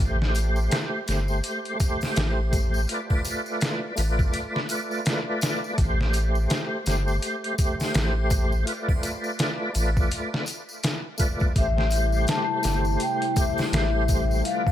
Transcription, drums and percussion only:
0.22 snare soft
0.35 closed hi-hat medium
0.35 tambourine medium
0.56 tambourine soft
0.71 snare loud
0.71 closed hi-hat medium
0.71 tambourine soft
1.07 snare soft
1.07 closed hi-hat medium
1.07 tambourine medium
1.28 tambourine soft
1.43 closed hi-hat medium
1.43 tambourine soft
1.65 closed hi-hat soft
1.80 kick medium
1.80 closed hi-hat medium
1.80 tambourine medium
2.01 snare soft
2.01 tambourine soft
2.01 triangle medium
2.15 snare loud
2.15 closed hi-hat medium
2.15 tambourine soft
2.53 kick medium
2.53 closed hi-hat medium
2.53 tambourine medium
2.74 tambourine medium
2.87 closed hi-hat medium
2.87 tambourine soft
3.10 kick medium
3.10 triangle medium
3.25 closed hi-hat medium
3.25 tambourine loud
3.46 tambourine soft
3.61 snare loud
3.61 closed hi-hat medium
3.61 tambourine soft
3.97 closed hi-hat medium
3.97 tambourine medium
3.97 triangle medium
4.19 kick loud
4.19 tambourine medium
4.33 closed hi-hat medium
4.33 tambourine soft
4.56 snare soft
4.69 closed hi-hat medium
4.69 tambourine medium
4.91 tambourine soft
5.05 snare loud
5.05 closed hi-hat medium
5.05 tambourine soft
5.41 snare loud
5.41 closed hi-hat medium
5.41 tambourine medium
5.64 tambourine soft
5.78 kick loud
5.78 closed hi-hat medium
5.78 tambourine soft
6.01 snare soft
6.13 closed hi-hat medium
6.13 tambourine medium
6.35 tambourine soft
6.50 snare loud
6.50 closed hi-hat medium
6.50 tambourine soft
6.86 snare soft
6.86 closed hi-hat medium
6.86 tambourine medium
7.08 tambourine soft
7.22 closed hi-hat medium
7.22 tambourine soft
7.44 closed hi-hat soft
7.58 kick medium
7.58 closed hi-hat medium
7.58 tambourine loud
7.80 snare soft
7.80 tambourine soft
7.80 triangle medium
7.94 snare loud
7.94 closed hi-hat medium
7.94 tambourine soft
8.30 kick medium
8.30 closed hi-hat medium
8.30 tambourine medium
8.52 tambourine soft
8.67 closed hi-hat medium
8.67 tambourine soft
8.89 kick medium
8.89 triangle medium
9.03 closed hi-hat medium
9.03 tambourine medium
9.24 tambourine medium
9.39 snare loud
9.39 closed hi-hat medium
9.39 tambourine soft
9.74 closed hi-hat medium
9.74 tambourine medium
9.74 triangle medium
9.97 kick medium
9.97 tambourine medium
10.11 closed hi-hat medium
10.11 tambourine soft
10.34 snare soft
10.46 closed hi-hat medium
10.46 tambourine medium
10.69 tambourine soft
10.83 snare loud
10.83 closed hi-hat medium
10.83 tambourine soft
11.18 kick medium
11.18 closed hi-hat medium
11.18 tambourine medium
11.40 kick medium
11.40 tambourine soft
11.55 kick loud
11.55 closed hi-hat medium
11.55 tambourine soft
11.78 snare soft
11.90 closed hi-hat medium
11.90 tambourine medium
12.12 tambourine soft
12.27 snare loud
12.27 closed hi-hat medium
12.27 tambourine soft
12.63 snare soft
12.63 closed hi-hat medium
12.63 tambourine medium
12.85 tambourine soft
13.00 closed hi-hat medium
13.00 tambourine soft
13.22 closed hi-hat soft
13.36 kick medium
13.36 closed hi-hat medium
13.36 tambourine medium
13.58 snare soft
13.58 tambourine soft
13.58 triangle medium
13.73 snare loud
13.73 closed hi-hat medium
13.73 tambourine soft
14.08 kick medium
14.08 closed hi-hat medium
14.08 tambourine medium
14.31 tambourine soft
14.44 closed hi-hat medium
14.44 tambourine soft
14.67 kick medium
14.67 triangle medium

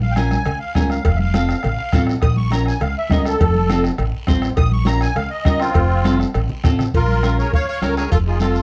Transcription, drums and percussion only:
0.01 high conga medium
0.16 bombo rim medium
0.16 cowbell medium
0.16 high conga medium
0.16 short guiro medium
0.31 bombo rim medium
0.31 high conga medium
0.31 short guiro medium
0.46 bombo rim medium
0.46 cowbell medium
0.46 high conga soft
0.46 low conga medium
0.46 long guiro medium
0.75 bombo low medium
0.75 bombo rim medium
0.75 cowbell medium
0.75 high conga medium
0.75 low timbale medium
0.75 short guiro medium
0.90 bombo rim medium
0.90 short guiro medium
1.04 bombo low medium
1.04 bombo rim medium
1.04 cowbell loud
1.04 high conga soft
1.04 long guiro medium
1.19 high conga medium
1.34 bombo rim medium
1.34 cowbell medium
1.34 high conga loud
1.34 short guiro medium
1.49 bombo rim medium
1.49 short guiro medium
1.63 bombo rim medium
1.63 cowbell medium
1.63 high conga soft
1.63 low conga medium
1.63 long guiro medium
1.93 bombo low medium
1.93 bombo rim medium
1.93 cowbell medium
1.93 high conga medium
1.93 short guiro medium
2.07 bombo rim medium
2.07 short guiro medium
2.22 bombo low medium
2.22 bombo rim medium
2.22 cowbell loud
2.22 high conga soft
2.22 long guiro medium
2.36 high conga medium
2.51 bombo rim medium
2.51 cowbell medium
2.51 high conga medium
2.51 short guiro medium
2.66 bombo rim medium
2.66 short guiro medium
2.81 bombo rim medium
2.81 cowbell medium
2.81 high conga soft
2.81 low conga medium
2.81 long guiro medium
3.10 bombo low medium
3.10 bombo rim medium
3.10 cowbell medium
3.10 high conga medium
3.10 low timbale medium
3.10 short guiro medium
3.25 bombo rim medium
3.25 short guiro medium
3.40 bombo low medium
3.40 bombo rim medium
3.40 cowbell loud
3.40 high conga soft
3.40 long guiro medium
3.55 high conga medium
3.69 bombo rim medium
3.69 cowbell medium
3.69 high conga loud
3.69 short guiro medium
3.84 bombo rim medium
3.84 short guiro medium
3.98 bombo rim medium
3.98 cowbell medium
3.98 high conga soft
3.98 low conga medium
3.98 long guiro medium
4.27 bombo low medium
4.27 bombo rim medium
4.27 cowbell medium
4.27 high conga medium
4.27 low timbale medium
4.27 short guiro medium
4.42 bombo rim medium
4.42 short guiro medium
4.57 bombo low medium
4.57 bombo rim medium
4.57 cowbell loud
4.57 high conga soft
4.57 long guiro medium
4.72 high conga medium
4.85 bombo rim medium
4.85 cowbell medium
4.85 high conga medium
4.85 short guiro medium
5.01 bombo rim medium
5.01 short guiro medium
5.16 bombo rim medium
5.16 cowbell medium
5.16 high conga soft
5.16 low conga medium
5.16 long guiro medium
5.45 bombo low medium
5.45 bombo rim medium
5.45 cowbell medium
5.45 high conga medium
5.45 short guiro medium
5.60 bombo rim medium
5.60 short guiro medium
5.74 bombo low medium
5.74 bombo rim medium
5.74 cowbell loud
5.74 high conga soft
5.74 long guiro medium
6.04 bombo rim medium
6.04 cowbell medium
6.04 high conga loud
6.04 short guiro medium
6.20 bombo rim medium
6.20 short guiro medium
6.34 bombo rim medium
6.34 cowbell medium
6.34 long guiro medium
6.49 low conga medium
6.64 bombo low medium
6.64 bombo rim medium
6.64 cowbell medium
6.64 low conga medium
6.64 short guiro medium
6.79 bombo rim medium
6.79 low conga medium
6.79 short guiro medium
6.94 bombo low medium
6.94 cowbell loud
6.94 long guiro medium
7.08 high conga medium
7.23 bombo rim medium
7.23 cowbell medium
7.23 high conga medium
7.23 short guiro medium
7.39 short guiro medium
7.53 bombo low medium
7.53 cowbell medium
7.53 long guiro medium
7.82 bombo rim medium
7.82 cowbell medium
7.82 high conga medium
7.82 short guiro medium
7.97 bombo rim medium
7.97 short guiro medium
8.12 bombo low medium
8.12 cowbell loud
8.12 long guiro medium
8.40 bombo rim medium
8.40 cowbell medium
8.40 high conga medium
8.40 short guiro medium
8.55 short guiro medium

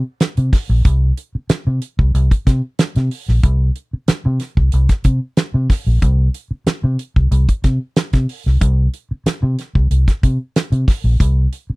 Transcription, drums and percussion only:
0.20 snare loud
0.20 closed hi-hat medium
0.37 closed hi-hat medium
0.53 kick loud
0.53 snare soft
0.53 open hi-hat medium
0.85 kick loud
0.85 closed hi-hat medium
1.17 closed hi-hat medium
1.50 snare loud
1.50 closed hi-hat loud
1.82 closed hi-hat medium
1.99 kick medium
2.15 closed hi-hat medium
2.31 kick medium
2.31 closed hi-hat medium
2.47 kick loud
2.47 snare soft
2.47 closed hi-hat medium
2.79 snare loud
2.79 closed hi-hat medium
2.96 snare soft
2.96 closed hi-hat soft
3.11 open hi-hat medium
3.28 snare soft
3.43 kick loud
3.43 closed hi-hat medium
3.76 closed hi-hat medium
4.08 snare loud
4.08 closed hi-hat medium
4.40 snare soft
4.40 closed hi-hat medium
4.57 kick medium
4.72 closed hi-hat medium
4.89 kick medium
4.89 snare soft
4.89 closed hi-hat medium
5.04 kick medium
5.04 closed hi-hat medium
5.37 snare loud
5.37 closed hi-hat medium
5.70 kick loud
5.70 snare soft
5.70 open hi-hat medium
6.02 kick loud
6.02 closed hi-hat medium
6.34 closed hi-hat medium
6.67 snare loud
6.67 closed hi-hat medium
6.99 closed hi-hat medium
7.16 kick medium
7.32 closed hi-hat medium
7.49 kick medium
7.49 closed hi-hat medium
7.64 kick loud
7.64 snare soft
7.64 closed hi-hat medium
7.96 snare loud
7.96 closed hi-hat medium
8.13 kick medium
8.13 snare soft
8.13 closed hi-hat medium
8.29 open hi-hat medium
8.47 snare soft
8.61 kick loud
8.61 closed hi-hat medium
8.94 closed hi-hat medium
9.26 snare loud
9.26 closed hi-hat loud
9.59 snare soft
9.59 closed hi-hat medium
9.75 kick medium
9.91 closed hi-hat medium
10.08 kick medium
10.08 snare soft
10.08 closed hi-hat medium
10.23 kick loud
10.23 closed hi-hat medium
10.56 snare loud
10.56 closed hi-hat medium
10.72 closed hi-hat medium
10.88 kick loud
10.88 snare soft
10.88 open hi-hat medium
11.20 kick loud
11.20 closed hi-hat medium
11.53 closed hi-hat medium

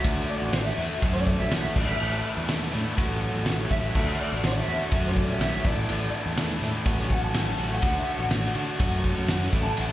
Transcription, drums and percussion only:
0.04 kick loud
0.04 ride bell medium
0.04 shaker medium
0.29 shaker medium
0.53 snare loud
0.53 ride bell medium
0.53 shaker loud
0.78 shaker medium
1.02 kick loud
1.02 ride bell medium
1.02 shaker medium
1.15 snare soft
1.27 kick medium
1.27 shaker medium
1.51 snare loud
1.51 ride bell medium
1.51 shaker loud
1.76 kick loud
1.76 crash loud
1.76 shaker medium
2.00 shaker loud
2.25 shaker medium
2.49 snare loud
2.49 ride bell medium
2.49 shaker loud
2.74 snare soft
2.74 shaker medium
2.98 kick loud
2.98 ride bell medium
2.98 shaker loud
3.24 shaker medium
3.46 snare loud
3.46 ride bell medium
3.46 shaker loud
3.71 kick medium
3.71 shaker medium
3.95 kick loud
3.95 crash loud
3.95 shaker loud
4.21 shaker medium
4.44 snare loud
4.44 ride bell medium
4.44 shaker loud
4.69 shaker medium
4.92 kick loud
4.92 ride bell medium
4.92 shaker loud
5.05 snare soft
5.17 kick medium
5.17 shaker medium
5.41 snare loud
5.41 ride bell medium
5.41 shaker loud
5.65 kick loud
5.65 shaker medium
5.89 ride bell medium
5.89 shaker medium
6.14 shaker medium
6.37 snare loud
6.37 ride bell medium
6.37 shaker loud
6.62 snare soft
6.62 shaker medium
6.86 kick loud
6.86 ride bell medium
6.86 shaker medium
6.98 snare soft
7.10 kick medium
7.10 shaker medium
7.34 snare loud
7.34 ride bell medium
7.34 shaker loud
7.59 shaker medium
7.82 kick loud
7.82 ride bell medium
7.82 shaker medium
8.07 shaker medium
8.31 snare loud
8.31 ride bell medium
8.31 shaker loud
8.56 shaker medium
8.79 kick loud
8.79 ride bell medium
8.79 shaker loud
9.03 kick medium
9.03 shaker medium
9.28 snare loud
9.28 ride bell medium
9.28 shaker loud
9.53 kick loud
9.53 shaker medium
9.77 ride bell medium
9.77 shaker loud

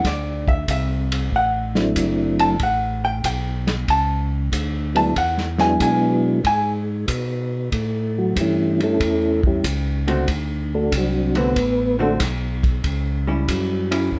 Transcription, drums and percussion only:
0.04 kick soft
0.04 snare soft
0.04 ride medium
0.48 kick soft
0.68 kick soft
0.68 hi-hat pedal medium
0.68 ride medium
1.12 ride medium
1.32 kick soft
1.75 snare soft
1.96 kick soft
1.96 hi-hat pedal medium
1.96 ride medium
2.39 ride soft
2.60 kick soft
2.60 ride medium
3.24 kick soft
3.24 hi-hat pedal medium
3.24 ride medium
3.67 snare soft
3.67 ride soft
3.88 kick soft
3.88 ride medium
4.52 kick soft
4.52 hi-hat pedal medium
4.52 ride medium
4.96 ride soft
5.16 kick soft
5.16 ride medium
5.38 snare soft
5.58 snare soft
5.80 kick soft
5.80 hi-hat pedal medium
5.80 ride medium
6.44 kick soft
6.44 ride medium
7.08 kick soft
7.08 hi-hat pedal medium
7.08 ride medium
7.72 kick soft
7.72 ride medium
8.36 kick soft
8.36 hi-hat pedal medium
8.36 ride medium
8.80 ride soft
9.00 kick soft
9.00 ride medium
9.43 kick medium
9.64 kick soft
9.64 hi-hat pedal medium
9.64 ride medium
10.08 ride soft
10.28 kick soft
10.28 ride medium
10.92 kick soft
10.92 hi-hat pedal soft
10.92 ride medium
11.35 ride soft
11.56 kick soft
11.56 ride medium
12.20 kick soft
12.20 snare soft
12.20 hi-hat pedal medium
12.20 ride medium
12.63 kick soft
12.63 ride soft
12.84 kick soft
12.84 ride medium
13.48 kick soft
13.48 hi-hat pedal medium
13.48 ride medium
13.92 ride medium
14.12 kick soft

